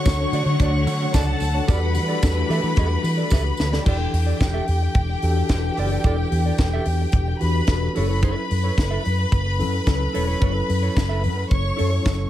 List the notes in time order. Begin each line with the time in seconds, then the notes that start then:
Already playing: D3 F#3 A3 D4 F#4 C#5 F#5 C#6
0.05 D2 D3 D4 F#4 C#5, kick, snare, closed hi-hat, tambourine
0.20 muted clean electric guitar stroke
0.32 D3 D4 F#4 D5, open hi-hat, tambourine
0.46 D3, muted clean electric guitar stroke
0.60 D2 D4 F#4 D5, kick, closed hi-hat
0.73 muted clean electric guitar stroke
0.87 D3, muted clean electric guitar stroke, open hi-hat, tambourine
1.01 D4 F#4 C#5
1.14 C#2 D4 F#4 A4 D5 A5, kick, snare, closed hi-hat, tambourine
1.28 muted clean electric guitar stroke
1.40 D2, muted clean electric guitar stroke, open hi-hat, tambourine
1.55 D4 F#4 C#5
1.68 E2 E3 G3 A3 D4 F#4 G4 A4 B4 D5 B5, kick, closed hi-hat, tambourine
1.82 muted clean electric guitar stroke
1.95 E3, muted clean electric guitar stroke, open hi-hat, tambourine
2.08 G4 A4 D5
2.23 E2 E3 D4 F#4 G4 A4, kick, snare, closed hi-hat, tambourine
2.36 muted clean electric guitar stroke
2.49 E3 G4 A4 E5, open hi-hat
2.63 E3, muted clean electric guitar stroke
2.76 E2 G4 A4 E5, kick, closed hi-hat, tambourine
2.90 muted clean electric guitar stroke
3.03 E3, muted clean electric guitar stroke, open hi-hat, tambourine
3.17 G4 A4 D5
3.30 C#2 G4 A4 E5, kick, snare, tambourine
3.45 muted clean electric guitar stroke
3.57 D2, muted clean electric guitar stroke, snare, tambourine
3.72 G4 A4 D5, snare
3.85 E1 E3 D4 E4 G4 A4 D5 G5, kick, crash
4.00 muted clean electric guitar stroke
4.13 E2, muted clean electric guitar stroke, open hi-hat
4.26 G4 A4 D5
4.40 E1, muted clean electric guitar stroke, kick, snare, closed hi-hat
4.54 G4 A4 E5
4.67 E2, muted clean electric guitar stroke, open hi-hat
4.82 muted clean electric guitar stroke
4.94 E1, muted clean electric guitar stroke, kick, closed hi-hat
5.09 muted clean electric guitar stroke
5.22 E2 E3 D4 F#4 G4 A4, open hi-hat
5.37 muted clean electric guitar stroke
5.48 E1 E3 D4 E4 G4 B4, muted clean electric guitar stroke, kick, snare, closed hi-hat
5.64 muted clean electric guitar stroke
5.77 F#1 G4 A4 D5, open hi-hat
5.92 G4 A4 D5
6.04 E1 E3 D4 E4 G4 A4 D5, kick, closed hi-hat
6.18 muted clean electric guitar stroke
6.32 E2, muted clean electric guitar stroke, open hi-hat
6.46 G4 A4 D5
6.58 E1, muted clean electric guitar stroke, kick, snare, closed hi-hat
6.73 G4 A4 E5
6.85 E2, muted clean electric guitar stroke, open hi-hat
7.01 muted clean electric guitar stroke
7.12 E1, muted clean electric guitar stroke, kick, closed hi-hat
7.28 muted clean electric guitar stroke
7.40 E2 E3 D4 F#4 G4 B4 B5, open hi-hat
7.56 muted clean electric guitar stroke
7.67 E1 E3 D4 F#4 G4 A4, muted clean electric guitar stroke, kick, snare, closed hi-hat
7.82 muted clean electric guitar stroke
7.93 F#1 F#3 C#4 E4 G4 A4 B4 C#5 B5, open hi-hat
8.01 A4
8.09 E4 A4 C#5
8.22 E4 A4 C#5, kick, closed hi-hat
8.37 muted clean electric guitar stroke
8.50 F#2, muted clean electric guitar stroke, open hi-hat
8.64 E4 A4 C#5
8.78 F#1, muted clean electric guitar stroke, kick, snare, closed hi-hat
8.91 E4 A4 E5
9.05 F#2, muted clean electric guitar stroke, open hi-hat
9.19 muted clean electric guitar stroke
9.32 F#1, muted clean electric guitar stroke, kick, closed hi-hat
9.46 muted clean electric guitar stroke
9.58 F#2 F#3 C#4 E4 A4, open hi-hat
9.73 muted clean electric guitar stroke
9.87 C#2 F#3 C#4 E4 A4, muted clean electric guitar stroke, kick, snare, closed hi-hat
10.00 muted clean electric guitar stroke
10.13 E1 E4 A4 C#5, open hi-hat
10.27 E4 A4 C#5
10.40 F#1 F#3 C#4 E4 A4 C#5, kick, closed hi-hat
10.55 muted clean electric guitar stroke
10.68 F#2, muted clean electric guitar stroke, open hi-hat
10.83 E4 A4 C#5
10.97 F#1, kick, snare, closed hi-hat
11.09 E4 A4 E5
11.24 F#2, muted clean electric guitar stroke, open hi-hat
11.38 muted clean electric guitar stroke
11.51 F#1 C#5 C#6, kick, closed hi-hat
11.64 muted clean electric guitar stroke
11.77 F#2 F#3 C#4 E4 A4 C#5, open hi-hat
11.91 muted clean electric guitar stroke
12.05 F#1 F#3 C#4 E4 A4, muted clean electric guitar stroke, kick, snare, closed hi-hat
12.18 muted clean electric guitar stroke